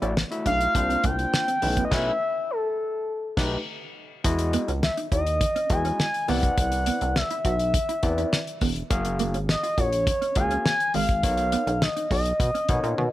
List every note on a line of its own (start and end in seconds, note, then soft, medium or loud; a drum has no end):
0.02 0.24 A1 medium
0.02 0.14 A3 medium
0.02 0.11 C#4 medium
0.02 0.14 E4 medium
0.02 0.14 F#4 medium
0.02 0.14 D5 medium
0.02 closed hi-hat soft
0.17 snare loud
0.17 high conga medium
0.31 0.75 A3 medium
0.31 0.75 E4 medium
0.31 0.75 F#4 medium
0.31 0.75 E5 medium
0.31 closed hi-hat medium
0.46 0.68 B1 medium
0.46 0.55 D4 medium
0.46 1.06 F5 loud
0.46 kick medium
0.46 closed hi-hat medium
0.61 closed hi-hat medium
0.75 0.97 C2 loud
0.75 1.45 A#3 medium
0.75 1.45 D4 medium
0.75 1.45 F4 medium
0.75 1.45 C5 medium
0.75 muted clean electric guitar stroke soft
0.75 kick loud
0.75 closed hi-hat medium
0.75 muted conga medium
0.90 0.98 C4 medium
0.90 closed hi-hat soft
1.04 1.26 C2 loud
1.04 1.13 A#3 medium
1.04 1.84 G5 loud
1.04 kick loud
1.04 closed hi-hat medium
1.04 muted conga soft
1.04 low conga medium
1.19 closed hi-hat soft
1.33 snare loud
1.33 high conga medium
1.48 1.57 C4 medium
1.48 closed hi-hat medium
1.62 1.85 B1 medium
1.62 1.90 A3 medium
1.62 1.90 C#4 medium
1.62 1.90 E4 medium
1.62 1.91 B4 medium
1.62 muted clean electric guitar stroke soft
1.62 open hi-hat medium
1.62 high conga medium
1.77 1.86 B3 medium
1.77 kick medium
1.77 closed hi-hat medium
1.85 1.94 D#5 medium
1.91 2.11 B1 loud
1.91 2.11 A3 medium
1.91 2.11 C#4 medium
1.91 2.11 E4 medium
1.91 2.11 B4 loud
1.91 2.52 E5 loud
1.91 kick loud
1.91 snare loud
1.91 crash medium
2.51 3.67 A4 medium
3.37 3.57 B1 loud
3.37 3.57 A3 medium
3.37 3.57 D#4 medium
3.37 3.57 G4 medium
3.37 3.57 B4 medium
3.37 kick loud
3.37 snare loud
3.37 crash medium
4.24 4.57 E2 loud
4.24 4.71 G#3 medium
4.24 4.71 E4 medium
4.24 4.72 F#4 medium
4.24 4.72 D#5 medium
4.24 kick loud
4.24 closed hi-hat loud
4.24 muted conga soft
4.39 muted clean electric guitar stroke soft
4.39 closed hi-hat medium
4.53 4.63 B3 medium
4.53 closed hi-hat medium
4.68 4.90 C#2 medium
4.68 4.77 C#4 medium
4.68 closed hi-hat soft
4.83 4.96 E5 medium
4.83 muted clean electric guitar stroke soft
4.83 snare loud
4.83 high conga medium
4.97 5.06 D#4 medium
4.97 closed hi-hat medium
5.12 5.45 D#2 medium
5.12 5.21 E4 medium
5.12 5.72 D#5 loud
5.12 kick medium
5.12 closed hi-hat medium
5.27 closed hi-hat medium
5.41 kick loud
5.41 closed hi-hat medium
5.41 muted conga medium
5.56 5.64 C#4 medium
5.56 closed hi-hat medium
5.70 5.92 E2 loud
5.70 6.05 G#3 medium
5.70 6.05 E4 medium
5.70 6.06 F#4 medium
5.70 6.06 D#5 medium
5.70 5.99 G#5 loud
5.70 muted clean electric guitar stroke soft
5.70 kick loud
5.70 closed hi-hat medium
5.70 muted conga medium
5.85 5.94 C#4 medium
5.85 closed hi-hat soft
5.99 6.27 G#5 loud
5.99 snare loud
5.99 high conga medium
6.14 closed hi-hat medium
6.28 6.51 C2 loud
6.28 6.37 B3 medium
6.28 7.21 C4 medium
6.28 7.22 E4 medium
6.28 7.22 B4 medium
6.28 7.22 D5 medium
6.28 7.18 F#5 loud
6.28 open hi-hat medium
6.28 high conga medium
6.43 kick medium
6.43 closed hi-hat medium
6.58 6.91 C2 loud
6.58 kick loud
6.58 closed hi-hat loud
6.58 muted conga soft
6.72 muted clean electric guitar stroke soft
6.72 closed hi-hat medium
6.86 6.96 B3 medium
6.86 closed hi-hat medium
6.86 muted conga soft
7.01 7.23 C2 medium
7.01 7.10 C4 medium
7.01 closed hi-hat soft
7.16 7.45 E5 medium
7.16 muted clean electric guitar stroke soft
7.16 snare loud
7.16 high conga medium
7.30 7.39 E4 medium
7.30 closed hi-hat medium
7.45 7.78 B1 loud
7.45 7.54 F#4 medium
7.45 8.58 E5 loud
7.45 kick medium
7.45 closed hi-hat medium
7.59 closed hi-hat medium
7.74 kick loud
7.74 closed hi-hat medium
7.74 muted conga medium
7.89 7.98 E4 medium
7.89 closed hi-hat medium
8.03 8.25 E2 loud
8.03 8.38 C4 medium
8.03 8.38 E4 medium
8.03 8.38 B4 medium
8.03 8.39 D5 medium
8.03 muted clean electric guitar stroke soft
8.03 kick loud
8.03 closed hi-hat medium
8.03 muted conga soft
8.18 8.27 E4 medium
8.18 closed hi-hat soft
8.32 snare loud
8.32 high conga medium
8.47 closed hi-hat medium
8.61 8.83 E1 loud
8.61 8.70 B3 medium
8.61 kick medium
8.61 open hi-hat medium
8.61 high conga medium
8.76 closed hi-hat medium
8.90 9.36 F#1 loud
8.90 9.37 A#3 medium
8.90 9.38 F#4 medium
8.90 9.38 G#4 medium
8.90 9.38 F5 medium
8.90 kick loud
8.90 closed hi-hat loud
8.90 muted conga soft
9.05 muted clean electric guitar stroke soft
9.05 closed hi-hat medium
9.19 9.29 A#3 medium
9.19 closed hi-hat medium
9.19 muted conga soft
9.34 9.56 G#1 medium
9.34 9.43 C#4 medium
9.34 closed hi-hat soft
9.49 9.80 D#5 medium
9.49 muted clean electric guitar stroke soft
9.49 snare loud
9.49 high conga medium
9.63 9.72 F4 medium
9.63 closed hi-hat medium
9.78 10.11 A#1 medium
9.78 9.87 F#4 medium
9.78 10.38 C#5 loud
9.78 kick medium
9.78 closed hi-hat medium
9.93 closed hi-hat medium
10.07 kick loud
10.07 closed hi-hat medium
10.07 muted conga medium
10.22 10.30 C#4 medium
10.22 closed hi-hat medium
10.35 10.58 C#2 loud
10.35 10.71 A#3 medium
10.35 10.71 F#4 medium
10.35 10.71 G#4 medium
10.35 10.72 F5 medium
10.35 10.65 G#5 loud
10.35 muted clean electric guitar stroke soft
10.35 kick loud
10.35 closed hi-hat medium
10.35 muted conga soft
10.51 10.60 C#4 medium
10.51 closed hi-hat soft
10.65 10.93 G#5 loud
10.65 snare loud
10.65 high conga medium
10.80 closed hi-hat medium
10.94 11.25 G#1 loud
10.94 11.03 G#3 medium
10.94 11.84 F5 loud
10.94 open hi-hat medium
10.94 high conga medium
11.09 kick medium
11.09 closed hi-hat medium
11.23 11.56 B1 loud
11.23 11.70 B3 medium
11.23 11.70 D#4 medium
11.23 11.71 A#4 medium
11.23 11.71 C#5 medium
11.23 kick loud
11.23 closed hi-hat loud
11.23 muted conga soft
11.37 muted clean electric guitar stroke soft
11.37 closed hi-hat medium
11.52 11.62 B3 medium
11.52 closed hi-hat medium
11.67 11.89 B1 loud
11.67 11.76 C#4 medium
11.67 closed hi-hat soft
11.82 12.11 D#5 medium
11.82 muted clean electric guitar stroke soft
11.82 snare loud
11.82 high conga medium
11.96 12.05 D#4 medium
11.96 closed hi-hat medium
12.11 12.33 B1 medium
12.11 12.20 F#4 medium
12.11 13.12 D#5 medium
12.11 kick medium
12.11 open hi-hat medium
12.25 closed hi-hat medium
12.40 12.51 B2 loud
12.40 kick loud
12.40 closed hi-hat medium
12.40 muted conga medium
12.54 12.63 C#4 medium
12.54 closed hi-hat medium
12.69 12.80 B2 loud
12.69 13.04 B3 medium
12.69 13.04 D#4 medium
12.69 13.05 A#4 medium
12.69 13.05 C#5 medium
12.69 muted clean electric guitar stroke soft
12.69 kick loud
12.69 closed hi-hat medium
12.69 muted conga soft
12.69 low conga medium
12.83 12.95 A#2 loud
12.83 12.92 C#4 medium
12.83 closed hi-hat soft
12.98 13.09 B2 loud
12.98 high tom medium
12.98 high conga medium